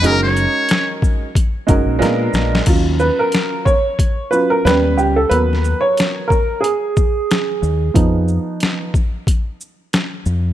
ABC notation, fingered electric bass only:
X:1
M:4/4
L:1/16
Q:"Swing 16ths" 1/4=91
K:Ebm
V:1 name="Fingered electric bass" clef=bass
G,,,3 z6 z G,,, B,,, B,,2 B,,,2 | E,,3 z8 z E,,2 D,,2 | E,,3 z8 z3 E,,2 | F,,3 z8 z3 F,,2 |]